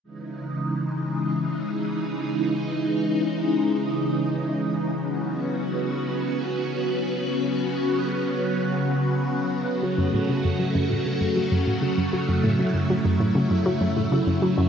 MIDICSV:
0, 0, Header, 1, 3, 480
1, 0, Start_track
1, 0, Key_signature, 4, "minor"
1, 0, Tempo, 612245
1, 27, Time_signature, 4, 2, 24, 8
1, 11516, End_track
2, 0, Start_track
2, 0, Title_t, "String machine"
2, 0, Program_c, 0, 50
2, 27, Note_on_c, 0, 49, 69
2, 27, Note_on_c, 0, 52, 61
2, 27, Note_on_c, 0, 56, 62
2, 28, Note_on_c, 0, 63, 76
2, 3836, Note_off_c, 0, 52, 0
2, 3836, Note_off_c, 0, 56, 0
2, 3836, Note_off_c, 0, 63, 0
2, 3867, Note_on_c, 0, 66, 77
2, 3868, Note_on_c, 0, 54, 64
2, 3868, Note_on_c, 0, 59, 65
2, 7676, Note_off_c, 0, 66, 0
2, 7677, Note_off_c, 0, 59, 0
2, 7707, Note_on_c, 0, 66, 79
2, 7709, Note_on_c, 0, 57, 64
2, 9608, Note_off_c, 0, 66, 0
2, 9628, Note_on_c, 0, 64, 79
2, 11516, Note_off_c, 0, 49, 0
2, 11516, Note_off_c, 0, 54, 0
2, 11516, Note_off_c, 0, 57, 0
2, 11516, Note_off_c, 0, 64, 0
2, 11516, End_track
3, 0, Start_track
3, 0, Title_t, "Synth arpeggio sound"
3, 0, Program_c, 1, 84
3, 7706, Note_on_c, 1, 54, 74
3, 7789, Note_off_c, 1, 54, 0
3, 7825, Note_on_c, 1, 42, 93
3, 7940, Note_off_c, 1, 42, 0
3, 7947, Note_on_c, 1, 45, 72
3, 8029, Note_off_c, 1, 45, 0
3, 8067, Note_on_c, 1, 49, 67
3, 8150, Note_off_c, 1, 49, 0
3, 8187, Note_on_c, 1, 42, 77
3, 8269, Note_off_c, 1, 42, 0
3, 8306, Note_on_c, 1, 54, 67
3, 8389, Note_off_c, 1, 54, 0
3, 8428, Note_on_c, 1, 42, 94
3, 8542, Note_off_c, 1, 42, 0
3, 8547, Note_on_c, 1, 45, 70
3, 8630, Note_off_c, 1, 45, 0
3, 8667, Note_on_c, 1, 49, 73
3, 8750, Note_off_c, 1, 49, 0
3, 8787, Note_on_c, 1, 42, 72
3, 8869, Note_off_c, 1, 42, 0
3, 8908, Note_on_c, 1, 54, 73
3, 8990, Note_off_c, 1, 54, 0
3, 9027, Note_on_c, 1, 42, 91
3, 9141, Note_off_c, 1, 42, 0
3, 9148, Note_on_c, 1, 45, 78
3, 9230, Note_off_c, 1, 45, 0
3, 9266, Note_on_c, 1, 49, 70
3, 9349, Note_off_c, 1, 49, 0
3, 9388, Note_on_c, 1, 42, 70
3, 9470, Note_off_c, 1, 42, 0
3, 9510, Note_on_c, 1, 54, 71
3, 9591, Note_off_c, 1, 54, 0
3, 9631, Note_on_c, 1, 42, 91
3, 9743, Note_off_c, 1, 42, 0
3, 9751, Note_on_c, 1, 45, 70
3, 9832, Note_off_c, 1, 45, 0
3, 9870, Note_on_c, 1, 49, 74
3, 9951, Note_off_c, 1, 49, 0
3, 9989, Note_on_c, 1, 42, 72
3, 10071, Note_off_c, 1, 42, 0
3, 10113, Note_on_c, 1, 54, 75
3, 10193, Note_off_c, 1, 54, 0
3, 10229, Note_on_c, 1, 42, 93
3, 10343, Note_off_c, 1, 42, 0
3, 10348, Note_on_c, 1, 45, 73
3, 10430, Note_off_c, 1, 45, 0
3, 10467, Note_on_c, 1, 49, 70
3, 10550, Note_off_c, 1, 49, 0
3, 10588, Note_on_c, 1, 42, 74
3, 10670, Note_off_c, 1, 42, 0
3, 10708, Note_on_c, 1, 54, 74
3, 10790, Note_off_c, 1, 54, 0
3, 10827, Note_on_c, 1, 42, 99
3, 10941, Note_off_c, 1, 42, 0
3, 10948, Note_on_c, 1, 45, 70
3, 11030, Note_off_c, 1, 45, 0
3, 11069, Note_on_c, 1, 49, 75
3, 11151, Note_off_c, 1, 49, 0
3, 11186, Note_on_c, 1, 42, 71
3, 11269, Note_off_c, 1, 42, 0
3, 11307, Note_on_c, 1, 54, 72
3, 11390, Note_off_c, 1, 54, 0
3, 11428, Note_on_c, 1, 42, 96
3, 11516, Note_off_c, 1, 42, 0
3, 11516, End_track
0, 0, End_of_file